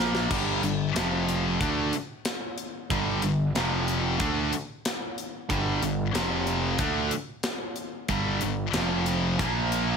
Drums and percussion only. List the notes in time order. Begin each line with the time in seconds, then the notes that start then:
0.15 snare
0.31 kick, crash
0.63 closed hi-hat
0.96 snare, closed hi-hat
1.29 closed hi-hat
1.61 kick, closed hi-hat
1.93 closed hi-hat
2.25 snare, closed hi-hat
2.58 closed hi-hat
2.90 kick, closed hi-hat
3.22 closed hi-hat
3.55 snare, closed hi-hat
3.88 closed hi-hat
4.20 kick, closed hi-hat
4.53 closed hi-hat
4.85 snare, closed hi-hat
5.18 closed hi-hat
5.50 kick, closed hi-hat
5.82 closed hi-hat
6.15 snare, closed hi-hat
6.47 closed hi-hat
6.79 kick, closed hi-hat
7.11 closed hi-hat
7.43 snare, closed hi-hat
7.76 closed hi-hat
8.08 kick, closed hi-hat
8.41 closed hi-hat
8.73 snare, closed hi-hat
9.06 closed hi-hat
9.39 kick, closed hi-hat
9.72 closed hi-hat